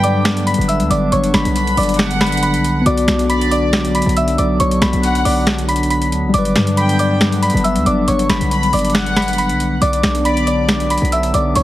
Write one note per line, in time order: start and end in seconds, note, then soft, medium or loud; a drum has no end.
0.00 0.54 G2 loud
0.00 6.30 D3 medium
0.00 2.82 F#3 medium
0.00 2.80 G3 medium
0.00 6.30 B3 medium
0.00 6.30 D4 loud
0.00 2.84 B4 medium
0.00 0.22 G5 loud
0.00 0.44 D6 medium
0.00 closed hi-hat medium
0.04 0.45 D5 medium
0.25 finger snap medium
0.25 snare loud
0.25 closed hi-hat medium
0.37 closed hi-hat medium
0.46 0.65 B5 medium
0.46 0.65 B6 medium
0.46 closed hi-hat medium
0.54 closed hi-hat medium
0.58 0.82 G1 loud
0.58 closed hi-hat soft
0.68 0.87 E5 medium
0.68 0.87 E6 medium
0.68 closed hi-hat medium
0.80 0.90 D2 loud
0.80 closed hi-hat medium
0.90 1.11 G1 loud
0.90 1.09 D5 medium
0.90 1.08 D6 medium
0.90 closed hi-hat medium
1.12 1.33 G1 loud
1.12 1.31 C#5 medium
1.12 1.30 C#6 loud
1.12 closed hi-hat medium
1.24 closed hi-hat medium
1.34 1.45 G1 loud
1.34 1.75 B5 medium
1.34 1.75 B6 medium
1.34 finger snap medium
1.34 snare loud
1.34 closed hi-hat medium
1.45 1.76 B1 loud
1.45 closed hi-hat medium
1.56 1.96 B5 medium
1.56 closed hi-hat medium
1.67 closed hi-hat medium
1.77 2.56 G1 loud
1.77 1.96 D5 medium
1.77 1.95 D6 medium
1.77 closed hi-hat medium
1.77 open hi-hat medium
1.83 closed hi-hat medium
1.89 closed hi-hat medium
1.94 closed hi-hat soft
1.99 2.82 F#5 medium
1.99 finger snap medium
1.99 snare loud
1.99 closed hi-hat medium
2.11 closed hi-hat medium
2.21 2.39 B5 medium
2.21 2.39 B6 medium
2.21 finger snap medium
2.21 snare loud
2.21 closed hi-hat medium
2.27 closed hi-hat medium
2.32 closed hi-hat medium
2.37 closed hi-hat medium
2.43 2.61 B5 medium
2.43 2.61 B6 medium
2.43 closed hi-hat medium
2.54 2.84 B1 loud
2.54 closed hi-hat medium
2.65 closed hi-hat medium
2.81 6.28 B3 medium
2.86 3.07 B1 loud
2.86 6.30 F#3 medium
2.86 6.30 F#4 medium
2.86 3.27 D5 medium
2.86 3.27 D6 loud
2.86 closed hi-hat medium
2.91 6.32 D5 medium
2.98 closed hi-hat medium
3.08 4.02 B1 loud
3.08 finger snap medium
3.08 snare loud
3.08 closed hi-hat medium
3.19 closed hi-hat medium
3.29 3.70 D5 medium
3.29 3.48 B5 medium
3.29 3.48 B6 medium
3.29 closed hi-hat medium
3.41 closed hi-hat medium
3.51 3.92 D5 medium
3.51 3.92 D6 medium
3.51 closed hi-hat medium
3.73 finger snap medium
3.73 snare loud
3.73 closed hi-hat medium
3.85 closed hi-hat medium
3.95 4.13 B5 medium
3.95 4.13 B6 medium
3.95 closed hi-hat medium
4.02 closed hi-hat medium
4.06 4.37 B1 loud
4.06 closed hi-hat soft
4.17 4.35 E5 medium
4.17 4.35 E6 medium
4.17 closed hi-hat medium
4.28 closed hi-hat medium
4.38 4.59 B1 loud
4.38 4.57 D5 medium
4.38 4.56 D6 medium
4.38 closed hi-hat medium
4.60 4.81 B1 loud
4.60 4.78 C#5 medium
4.60 4.78 C#6 loud
4.60 closed hi-hat medium
4.71 closed hi-hat medium
4.82 4.93 B1 loud
4.82 5.22 B5 medium
4.82 5.23 B6 medium
4.82 finger snap medium
4.82 snare loud
4.82 closed hi-hat medium
4.93 5.24 B1 loud
4.93 closed hi-hat medium
5.03 5.44 F#5 medium
5.03 closed hi-hat medium
5.15 closed hi-hat medium
5.25 6.14 B1 loud
5.25 5.44 D5 medium
5.25 5.43 D6 medium
5.25 open hi-hat medium
5.47 finger snap medium
5.47 snare loud
5.47 closed hi-hat medium
5.58 closed hi-hat medium
5.68 5.87 B5 medium
5.68 5.87 B6 medium
5.68 closed hi-hat medium
5.76 closed hi-hat medium
5.83 closed hi-hat soft
5.90 6.08 B5 medium
5.90 6.09 B6 medium
5.90 closed hi-hat medium
6.02 closed hi-hat medium
6.12 6.25 D2 loud
6.12 closed hi-hat medium
6.24 6.33 B1 loud
6.29 9.75 G3 medium
6.34 6.55 G1 loud
6.34 9.78 D3 medium
6.34 9.78 F#3 medium
6.34 9.78 B3 medium
6.34 9.78 D4 loud
6.34 6.75 D5 medium
6.34 6.75 D6 loud
6.34 closed hi-hat medium
6.38 9.80 B4 medium
6.45 closed hi-hat medium
6.56 7.50 G2 loud
6.56 finger snap medium
6.56 snare loud
6.56 closed hi-hat medium
6.67 closed hi-hat medium
6.77 7.18 G5 medium
6.77 6.95 B5 medium
6.77 6.96 B6 medium
6.77 closed hi-hat medium
6.89 closed hi-hat medium
6.99 7.40 D5 medium
6.99 7.40 D6 medium
6.99 closed hi-hat medium
7.21 finger snap medium
7.21 snare loud
7.21 closed hi-hat medium
7.32 closed hi-hat medium
7.42 7.60 B5 medium
7.42 7.61 B6 medium
7.42 closed hi-hat medium
7.50 closed hi-hat medium
7.54 7.77 G1 loud
7.54 closed hi-hat soft
7.64 7.83 E5 medium
7.64 7.82 E6 medium
7.64 closed hi-hat medium
7.76 7.85 D2 loud
7.76 closed hi-hat medium
7.86 8.07 G1 loud
7.86 8.05 D5 medium
7.86 8.04 D6 medium
7.86 closed hi-hat medium
8.08 8.29 G1 loud
8.08 8.26 C#5 medium
8.08 8.26 C#6 loud
8.08 closed hi-hat medium
8.19 closed hi-hat medium
8.29 8.41 G1 loud
8.29 8.70 B5 medium
8.29 8.71 B6 medium
8.29 finger snap medium
8.29 snare loud
8.29 closed hi-hat medium
8.41 8.72 B1 loud
8.41 closed hi-hat medium
8.51 8.92 B5 medium
8.51 closed hi-hat medium
8.63 closed hi-hat medium
8.73 9.51 G1 loud
8.73 8.92 D5 medium
8.73 8.91 D6 medium
8.73 closed hi-hat medium
8.73 open hi-hat medium
8.79 closed hi-hat medium
8.85 closed hi-hat medium
8.90 closed hi-hat soft
8.95 9.78 F#5 medium
8.95 finger snap medium
8.95 snare loud
8.95 closed hi-hat medium
9.06 closed hi-hat medium
9.16 9.35 B5 medium
9.16 9.35 B6 medium
9.16 finger snap medium
9.16 snare loud
9.16 closed hi-hat medium
9.22 closed hi-hat medium
9.28 closed hi-hat medium
9.33 closed hi-hat medium
9.38 9.56 B5 medium
9.38 9.57 B6 medium
9.38 closed hi-hat medium
9.49 9.80 B1 loud
9.49 closed hi-hat medium
9.60 closed hi-hat medium
9.81 10.02 B1 loud
9.81 11.63 D3 medium
9.81 11.63 F#3 medium
9.81 11.63 B3 medium
9.81 11.63 D4 loud
9.81 10.23 D5 medium
9.81 10.22 D6 loud
9.81 closed hi-hat medium
9.93 closed hi-hat medium
10.03 10.98 B1 loud
10.03 finger snap medium
10.03 snare loud
10.03 closed hi-hat medium
10.15 closed hi-hat medium
10.25 10.66 D5 medium
10.25 10.43 B5 medium
10.25 10.44 B6 medium
10.25 closed hi-hat medium
10.37 closed hi-hat medium
10.47 10.88 D5 medium
10.47 10.88 D6 medium
10.47 closed hi-hat medium
10.69 finger snap medium
10.69 snare loud
10.69 closed hi-hat medium
10.80 closed hi-hat medium
10.90 11.08 B5 medium
10.90 11.09 B6 medium
10.90 closed hi-hat medium
10.98 closed hi-hat medium
11.02 11.33 B1 loud
11.02 closed hi-hat soft
11.12 11.31 E5 medium
11.12 11.30 E6 medium
11.12 closed hi-hat medium
11.23 closed hi-hat medium
11.34 11.55 B1 loud
11.34 11.53 D5 medium
11.34 11.52 D6 medium
11.34 closed hi-hat medium
11.55 11.63 B1 loud
11.55 11.63 C#5 medium
11.55 11.63 C#6 loud
11.55 closed hi-hat medium